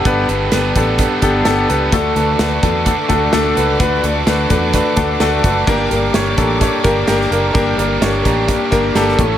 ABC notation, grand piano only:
X:1
M:4/4
L:1/8
Q:"Swing 16ths" 1/4=128
K:Glyd
V:1 name="Grand piano"
[B,DGB] [B,DGB] [B,DGB] [B,DGA] [B,DGB] [B,DGA] [B,DGA] [B,DGB] | [A,DFA] [A,DFB] [A,DFB] [A,DFA] [A,DFA] [A,DFA] [A,DFA] [A,DFB] | [A,DFB] [A,DFB] [A,DFB] [A,DFB] [A,DFB] [A,DFA] [A,DFA] [A,DFB] | [_B,DG_B] [B,DGB] [B,DGc] [B,DGA] [B,DGc] [B,DGB] [B,DGB] [B,DGB] |
[_B,DG_B] [B,DGB] [B,DGc] [B,DGB] [B,DGB] [B,DGB] [B,DGA] [A,CEA] |]
V:2 name="Grand piano" clef=bass
G,,3 z4 z | D,3 z4 z | D,3 z4 z | G,,3 z4 z |
G,,3 z4 A,, |]